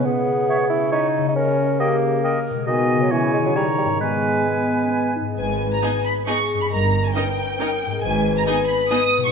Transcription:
Already playing: harp C#3 G#3 B3 E4
0.01 french horn section C#3, harp C#5
0.05 bassoon B3, clarinet G#4
0.49 oboe C#5, flute E5
0.69 bassoon E4
0.92 bassoon D#4, oboe C#5, flute E5
1.18 harp C#3
1.22 harp A#3
1.27 bassoon D#4, harp G4
1.31 harp D#5
1.36 bassoon C#4, clarinet A#4
1.79 bassoon A#3, clarinet G4, oboe D#5, flute G5
2.23 clarinet A#4, oboe D#5, flute G5
2.50 harp B2
2.55 harp G#3
2.59 harp G#4
2.64 bassoon D#3, clarinet F#4, harp D#5, oboe D#5
2.68 french horn section B3, flute G#5
2.94 harp C#3
2.98 bassoon F#3, harp C#4
3.03 harp G#4
3.07 french horn section C#3, harp C#5, oboe C#5
3.11 bassoon E3, clarinet E4, flute G#5
3.34 bassoon G#3
3.39 harp D#3
3.43 bassoon F#3, harp C#4
3.48 harp D#4
3.52 french horn section D#3, bassoon G3, clarinet D#4, harp A#4, oboe C#5
3.57 flute A#5
3.78 bassoon G3
3.84 harp G#2
3.89 harp B3
3.93 harp D#4
3.98 bassoon G#3, french horn section G#3, clarinet B3, harp B4, oboe B4
4.02 flute G#5
4.47 french horn section B3
4.83 french horn section C#4
4.91 french horn section B3
5.15 french horn section D#4
5.21 harp G#2
5.25 harp B3
5.30 harp D#4
5.34 double bass section G#1, harp D#5
5.39 cello section G#2, french horn section B4, violin section G#5
5.74 violin section A#5
5.83 viola section B3 D#4, violin section G#4 D#5 G#5
6.05 violin section B5
6.27 viola section B3 D#4, french horn section G#4, violin section G#4 D#5 C#6
6.54 harp G2
6.58 harp C#4, violin section B5
6.63 harp D#4
6.67 harp D#5
6.71 double bass section G1, cello section G2, french horn section A#4, violin section A#5
7.07 violin section G#5
7.15 viola section C#4 D#4, violin section A#4 D#5 G5, french horn section B4
7.59 viola section C#4 D#4, french horn section A#4, violin section A#4 D#5
7.86 harp G#2
7.91 harp B3
7.95 harp D#4
8.00 double bass section G#1, harp D#5, violin section G#5
8.04 cello section G#2, french horn section B4
8.38 violin section A#5
8.47 viola section B3 D#4, violin section G#4 D#5 G#5
8.69 violin section B5
8.91 viola section B3 D#4, violin section G#4 D#5 D#6
9.17 harp B2
9.22 harp G#3, violin section C#6
9.26 harp D#4

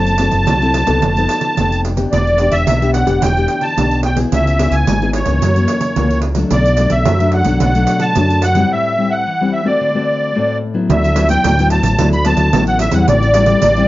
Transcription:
Already playing: fingered electric bass F#1, nylon-string guitar F#3 C4 E4 A4, accordion A5
0.07 pandeiro
0.18 nylon-string guitar C4 E4 A4, pandeiro
0.31 fingered electric bass F#1, pandeiro
0.47 fingered electric bass C2, nylon-string guitar F#3, pandeiro
0.62 nylon-string guitar C4 E4 A4, pandeiro
0.74 pandeiro
0.87 fingered electric bass C2, nylon-string guitar B3 D#4 A4, pandeiro
1.02 fingered electric bass F1, nylon-string guitar F3, pandeiro
1.17 nylon-string guitar B3 D#4 A4, pandeiro
1.29 pandeiro
1.41 pandeiro
1.57 fingered electric bass F1, nylon-string guitar C3 B3 D#4 A4, pandeiro
1.72 pandeiro
1.85 pandeiro
1.96 nylon-string guitar B3 D4 G4, pandeiro
2.12 fingered electric bass E1, nylon-string guitar E3, accordion D5, pandeiro
2.27 pandeiro
2.38 nylon-string guitar B3 D4 G4, pandeiro
2.52 fingered electric bass E1, accordion E5, pandeiro
2.67 fingered electric bass B1, nylon-string guitar B2, pandeiro
2.81 nylon-string guitar B3 D4 G4, pandeiro
2.93 accordion F#5, pandeiro
3.06 fingered electric bass E1, nylon-string guitar B3 D4 G4, pandeiro
3.21 fingered electric bass E1, nylon-string guitar E3, accordion G5, pandeiro
3.36 nylon-string guitar B3 D4 G4, pandeiro
3.48 pandeiro
3.61 accordion A5, pandeiro
3.76 fingered electric bass B1, nylon-string guitar B2 B3 D4 G4, pandeiro
3.91 pandeiro
4.03 accordion G5, pandeiro
4.16 nylon-string guitar B3 E4 G#4, pandeiro
4.32 fingered electric bass C#2, nylon-string guitar C#3, accordion E5, pandeiro
4.47 pandeiro
4.59 nylon-string guitar B3 E4 G#4, pandeiro
4.71 fingered electric bass C#2, accordion G#5, pandeiro
4.87 fingered electric bass G#1, nylon-string guitar G#2, pandeiro
5.02 nylon-string guitar B3 E4 G#4, pandeiro
5.13 accordion C#5, pandeiro
5.25 fingered electric bass C#2, nylon-string guitar E3 A#3 C#4, pandeiro
5.42 nylon-string guitar F#2, fingered electric bass F#2, pandeiro
5.56 nylon-string guitar E3 A#3 C#4, pandeiro
5.68 pandeiro
5.81 pandeiro
5.96 fingered electric bass C#2, nylon-string guitar C#3 E3 A#3 C#4, pandeiro
6.11 pandeiro
6.22 pandeiro
6.35 nylon-string guitar F#3 A3 D4, pandeiro
6.51 fingered electric bass B1, nylon-string guitar B2, accordion D5, pandeiro
6.66 pandeiro
6.77 nylon-string guitar F#3 A3 D4, pandeiro
6.90 fingered electric bass B1, accordion E5, pandeiro
7.06 nylon-string guitar F#2, fingered electric bass F#2, pandeiro
7.20 nylon-string guitar F#3 A3 D4, pandeiro
7.32 accordion F#5, pandeiro
7.45 fingered electric bass B1, nylon-string guitar F#3 A3 D4, pandeiro
7.60 fingered electric bass B1, nylon-string guitar B2, accordion F#5, pandeiro
7.75 nylon-string guitar F#3 A3 D4, pandeiro
7.87 pandeiro
8.00 accordion A5, pandeiro
8.15 nylon-string guitar F#2 F#3 A3 D4, fingered electric bass F#2, pandeiro
8.30 pandeiro
8.42 accordion F#5, pandeiro
8.55 nylon-string guitar G3 C4 E4, pandeiro
8.71 nylon-string guitar A2, accordion E5
8.98 nylon-string guitar G3 C4 E4
9.10 accordion F#5
9.27 nylon-string guitar E3
9.41 nylon-string guitar G3 C4 E4
9.53 accordion E5
9.64 nylon-string guitar A3 C4 F#4, accordion D5
9.81 nylon-string guitar D3
9.95 nylon-string guitar A3 C4 F#4
10.35 nylon-string guitar A2 A3 C4 F#4
10.74 nylon-string guitar F#3 B3 E4
10.89 fingered electric bass D2, nylon-string guitar D3, accordion E5, pandeiro
11.04 pandeiro
11.16 nylon-string guitar F#3 B3 E4, pandeiro
11.29 nylon-string guitar F#3 B3 E4, accordion G5, pandeiro
11.44 fingered electric bass D2, nylon-string guitar A2, pandeiro
11.59 nylon-string guitar F#3 B3 E4, pandeiro
11.70 accordion A5, pandeiro
11.83 fingered electric bass A1, pandeiro
11.98 fingered electric bass D2, nylon-string guitar D3 F#3 B3 E4, pandeiro
12.13 accordion B5, pandeiro
12.25 nylon-string guitar F#3 B3 E4, accordion A5, pandeiro
12.37 fingered electric bass D2, pandeiro
12.53 fingered electric bass A1, nylon-string guitar A2 F#3 B3 E4, pandeiro
12.67 accordion F#5, pandeiro
12.79 accordion E5, pandeiro
12.92 fingered electric bass E2, nylon-string guitar G3 C4 E4, accordion F#5, pandeiro
13.07 fingered electric bass A1, nylon-string guitar A2, accordion D5, pandeiro
13.22 pandeiro
13.34 nylon-string guitar G3 C4 E4, pandeiro
13.46 nylon-string guitar G3 C4 E4, pandeiro
13.62 fingered electric bass A1, nylon-string guitar E3, pandeiro
13.76 nylon-string guitar G3 C4 E4, pandeiro

